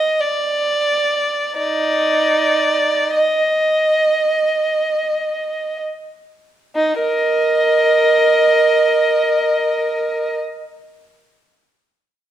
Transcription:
0.00 0.18 D#5 medium
0.20 1.57 D5 medium
1.58 3.10 D#4 soft
1.58 3.11 D5 medium
3.16 5.81 D#5 soft
6.76 7.02 D#4 soft
7.01 10.29 A#4 soft
7.01 10.38 D#5 medium

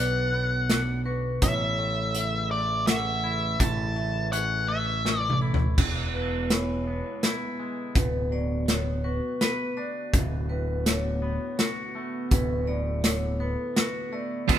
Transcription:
0.00 1.38 B1 medium
0.00 1.06 B2 medium
0.00 1.38 D3 medium
0.00 1.38 F#3 medium
0.00 0.32 B3 soft
0.00 1.38 B3 medium
0.00 0.68 D4 medium
0.00 0.70 F#4 medium
0.00 1.38 F#4 medium
0.00 0.70 B4 medium
0.00 1.38 B4 medium
0.00 1.01 F#5 medium
0.33 1.42 B3 medium
0.70 1.42 D4 medium
0.70 snare medium
0.70 closed hi-hat soft
1.06 1.42 F#4 medium
1.06 1.42 B4 medium
1.41 3.56 A1 medium
1.41 3.24 A2 medium
1.41 5.73 C#3 medium
1.41 5.73 E3 medium
1.41 5.73 A3 medium
1.41 5.73 E4 medium
1.41 3.58 A4 medium
1.41 2.15 C#5 medium
1.41 2.51 E5 medium
1.41 kick medium
1.41 closed hi-hat medium
1.78 2.50 A3 soft
2.15 2.87 E5 medium
2.15 closed hi-hat soft
2.51 3.95 A3 medium
2.51 2.87 D5 medium
2.87 4.31 C#4 medium
2.87 3.62 E5 medium
2.87 3.24 F#5 medium
2.87 snare medium
2.87 closed hi-hat soft
3.24 5.05 E4 medium
3.24 3.95 E5 medium
3.60 5.74 A1 medium
3.60 5.42 A2 medium
3.60 5.75 B4 medium
3.60 4.32 A5 medium
3.60 kick medium
3.60 closed hi-hat soft
3.96 4.68 A3 medium
3.96 4.33 E5 medium
4.32 5.04 C#4 medium
4.32 5.05 A4 medium
4.32 4.66 F#5 medium
4.32 closed hi-hat soft
4.68 5.78 A3 medium
4.68 5.19 E5 medium
5.05 5.78 C#4 medium
5.05 snare soft
5.19 5.37 D5 medium
5.30 mid tom medium
5.42 5.78 E4 medium
5.42 5.78 A4 medium
5.54 floor tom medium
5.78 7.01 E1 medium
5.78 7.59 E2 medium
5.78 14.59 D3 medium
5.78 7.93 G#3 medium
5.78 7.94 B3 medium
5.78 7.94 E4 medium
5.78 7.93 B4 medium
5.78 kick medium
5.78 crash medium
6.14 7.94 B2 soft
6.14 6.50 B4 medium
6.50 7.95 E3 medium
6.50 7.23 C#5 medium
6.50 snare medium
6.50 closed hi-hat medium
6.87 8.68 B3 medium
7.23 7.96 E4 medium
7.23 snare medium
7.23 closed hi-hat soft
7.59 7.96 G#3 medium
7.95 9.19 D1 medium
7.95 9.77 B2 medium
7.95 14.45 A3 medium
7.95 10.11 B3 medium
7.95 14.45 F#4 medium
7.95 8.32 B4 medium
7.95 12.27 B4 medium
7.95 kick medium
7.95 closed hi-hat medium
8.32 10.50 F#3 medium
8.32 8.68 D5 medium
8.68 10.53 B3 medium
8.68 9.04 C#5 medium
8.68 snare medium
8.68 closed hi-hat soft
9.04 11.22 F#4 medium
9.04 9.77 B4 medium
9.41 10.53 B4 medium
9.41 snare medium
9.41 closed hi-hat soft
9.77 11.95 D4 medium
9.77 10.13 D5 medium
10.13 11.37 D1 medium
10.13 11.95 D2 medium
10.13 14.45 B3 medium
10.13 kick loud
10.13 closed hi-hat medium
10.49 12.31 A2 soft
10.49 10.86 B4 medium
10.86 12.68 D3 medium
10.86 11.58 C#5 medium
10.86 snare medium
10.86 closed hi-hat medium
11.22 13.40 B3 medium
11.59 13.40 F#4 medium
11.59 snare medium
11.59 closed hi-hat medium
11.95 13.76 A3 medium
12.31 13.54 D1 medium
12.31 14.13 D2 medium
12.31 14.47 A4 medium
12.31 12.67 B4 medium
12.31 kick loud
12.31 closed hi-hat medium
12.67 14.49 A2 soft
12.67 13.04 D5 medium
13.04 14.49 D3 medium
13.04 13.40 C#5 medium
13.04 snare medium
13.04 closed hi-hat medium
13.40 14.59 B3 medium
13.40 14.13 B4 medium
13.76 14.49 F#4 medium
13.76 snare medium
13.76 closed hi-hat soft
14.12 14.49 A3 medium
14.12 14.49 D5 medium
14.48 14.59 E1 medium
14.48 14.59 E2 medium
14.48 14.59 B2 medium
14.48 14.59 E3 medium
14.48 14.59 G#3 medium
14.48 14.59 B3 medium
14.48 14.59 E4 medium
14.48 kick loud
14.48 closed hi-hat medium

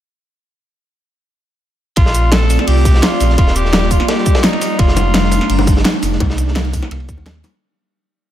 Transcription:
1.96 2.57 A#1 medium
1.96 3.37 A3 medium
1.96 3.37 C4 medium
1.96 4.76 F4 medium
1.96 2.34 F4 loud
1.96 4.76 D5 medium
1.96 kick loud
1.96 closed hi-hat loud
1.96 ride medium
2.06 snare medium
2.15 closed hi-hat medium
2.15 ride medium
2.15 cabasa medium
2.32 2.60 A4 loud
2.32 snare loud
2.32 closed hi-hat medium
2.32 ride loud
2.41 snare soft
2.50 open hi-hat medium
2.50 ride medium
2.50 cabasa medium
2.59 2.69 A4 medium
2.59 snare medium
2.59 closed hi-hat soft
2.67 3.01 C2 medium
2.67 3.04 G4 loud
2.67 closed hi-hat loud
2.67 open hi-hat medium
2.85 kick loud
2.85 closed hi-hat medium
2.85 ride medium
2.85 cabasa medium
2.94 snare medium
3.03 3.38 F4 loud
3.03 snare loud
3.03 closed hi-hat loud
3.03 ride medium
3.20 3.36 A#1 loud
3.20 snare soft
3.20 open hi-hat medium
3.20 ride medium
3.20 cabasa medium
3.30 snare soft
3.38 3.99 D#1 loud
3.38 4.78 G3 medium
3.38 4.78 A#3 medium
3.38 3.57 F4 loud
3.38 kick loud
3.38 closed hi-hat loud
3.38 ride medium
3.47 snare medium
3.56 3.92 G4 loud
3.56 closed hi-hat medium
3.56 ride medium
3.56 cabasa medium
3.65 snare soft
3.73 snare loud
3.73 closed hi-hat medium
3.73 ride medium
3.82 snare soft
3.91 4.10 F4 loud
3.91 kick medium
3.91 open hi-hat medium
3.91 ride medium
3.91 cabasa medium
4.00 snare medium
4.00 closed hi-hat soft
4.08 4.45 G4 loud
4.08 snare loud
4.08 closed hi-hat medium
4.08 ride medium
4.18 snare soft
4.26 kick loud
4.26 closed hi-hat medium
4.26 ride medium
4.26 cabasa medium
4.35 snare loud
4.35 ride medium
4.44 4.81 D#4 loud
4.44 snare loud
4.44 snare soft
4.44 closed hi-hat loud
4.53 snare soft
4.53 ride medium
4.61 snare soft
4.61 open hi-hat medium
4.61 ride medium
4.61 cabasa medium
4.79 5.40 F1 loud
4.79 7.59 G3 medium
4.79 6.19 A3 medium
4.79 7.59 D4 medium
4.79 7.59 D#4 medium
4.79 5.85 F4 loud
4.79 kick loud
4.79 closed hi-hat medium
4.79 ride medium
4.88 snare medium
4.96 closed hi-hat medium
4.96 ride medium
4.96 high bongo medium
4.96 cabasa medium
5.14 snare loud
5.14 closed hi-hat medium
5.14 ride loud
5.24 snare soft
5.31 open hi-hat medium
5.31 ride medium
5.31 high bongo medium
5.31 cabasa medium
5.41 snare soft
5.41 closed hi-hat soft
5.50 5.84 G1 medium
5.50 closed hi-hat medium
5.50 open hi-hat medium
5.59 high bongo medium
5.67 kick loud
5.67 closed hi-hat medium
5.67 ride medium
5.67 cabasa medium
5.77 snare medium
5.85 snare loud
5.85 closed hi-hat medium
5.85 ride medium
5.94 high bongo medium
6.03 6.19 F1 loud
6.03 snare soft
6.03 open hi-hat medium
6.03 ride medium
6.03 cabasa medium
6.12 snare soft
6.20 6.81 C2 loud
6.20 7.60 A#3 medium
6.20 kick loud
6.20 closed hi-hat medium
6.20 ride medium
6.20 high bongo medium
6.30 snare medium
6.38 closed hi-hat medium
6.38 ride medium
6.38 cabasa medium
6.48 snare soft
6.55 snare loud
6.55 closed hi-hat medium
6.55 ride medium
6.55 high bongo medium
6.65 snare soft
6.65 closed hi-hat soft
6.73 kick medium
6.73 open hi-hat medium
6.73 ride medium
6.73 cabasa medium
6.82 snare soft
6.82 closed hi-hat soft
6.82 high bongo medium
6.91 7.10 C2 loud
6.91 closed hi-hat medium
6.91 ride loud
7.00 ride soft
7.09 7.43 D#2 medium
7.09 kick loud
7.09 closed hi-hat medium
7.09 ride medium
7.09 cabasa medium
7.18 high bongo medium
7.26 snare loud
7.26 closed hi-hat medium
7.26 ride medium
7.35 snare soft
7.44 snare soft
7.44 open hi-hat medium
7.44 ride medium
7.44 high bongo medium
7.44 cabasa medium

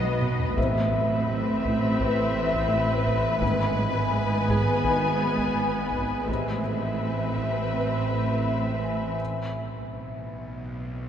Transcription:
0.00 0.53 B1 medium
0.00 0.57 B1 medium
0.00 0.53 B2 medium
0.00 0.53 B3 medium
0.00 0.53 B4 medium
0.00 0.57 B4 soft
0.00 0.53 D#5 medium
0.00 0.57 D#5 soft
0.00 0.17 F#5 medium
0.00 0.17 A5 soft
0.04 taiko high medium
0.21 0.43 B2 medium
0.21 taiko low-mid medium
0.40 taiko low medium
0.57 3.42 A1 medium
0.57 3.38 A1 medium
0.57 3.38 A2 medium
0.57 0.79 A2 medium
0.57 0.82 C3 medium
0.57 0.82 C4 medium
0.57 3.38 C4 medium
0.57 3.43 C4 soft
0.57 6.25 B4 medium
0.57 2.67 E5 medium
0.57 3.38 E5 medium
0.57 3.43 E5 soft
0.57 6.25 B5 soft
0.57 taiko medium
0.94 1.15 A3 medium
1.29 1.50 A3 soft
1.64 1.86 A2 medium
1.64 taiko medium
2.00 2.22 A2 medium
2.00 2.26 C3 medium
2.00 2.26 B4 medium
2.00 taiko medium
2.36 2.57 A3 soft
2.53 taiko medium
2.71 2.92 A2 medium
3.06 3.28 A2 soft
3.06 taiko medium
3.41 6.24 G#1 medium
3.41 6.28 G#1 medium
3.41 3.63 G#2 medium
3.41 6.24 G#2 medium
3.41 3.67 D#3 medium
3.41 3.68 B3 medium
3.41 6.24 B3 medium
3.41 6.28 B4 soft
3.41 6.29 D#5 soft
3.41 6.24 G#5 medium
3.41 taiko medium
3.78 3.99 G#3 soft
4.13 4.35 G#3 soft
4.49 4.70 G#2 medium
4.49 6.60 G#4 soft
4.49 6.60 G#5 soft
4.49 taiko medium
4.84 5.06 G#2 soft
4.84 5.10 D#3 soft
4.84 5.10 B3 medium
4.84 taiko medium
5.21 5.42 G#3 soft
5.37 taiko medium
5.56 5.78 G#2 medium
5.92 6.14 G#2 soft
5.92 taiko medium
6.27 9.19 A1 medium
6.27 9.15 A1 medium
6.27 9.15 A2 soft
6.27 6.50 A2 medium
6.27 6.54 C3 soft
6.27 9.15 C4 soft
6.27 9.19 C4 soft
6.27 6.54 C4 soft
6.27 9.16 B4 medium
6.27 9.15 E5 soft
6.27 9.19 E5 soft
6.27 9.16 B5 soft
6.27 taiko medium
6.65 6.86 A3 soft
7.01 7.22 A3 soft
7.35 7.58 A2 soft
7.35 9.15 E5 soft
7.35 taiko soft
7.73 7.95 A2 soft
7.73 7.98 C3 soft
7.73 7.98 B4 soft
8.09 8.31 A3 soft
8.46 8.68 A2 soft
8.83 9.05 A2 soft
8.83 9.18 G#5 soft
9.20 11.09 B1 medium

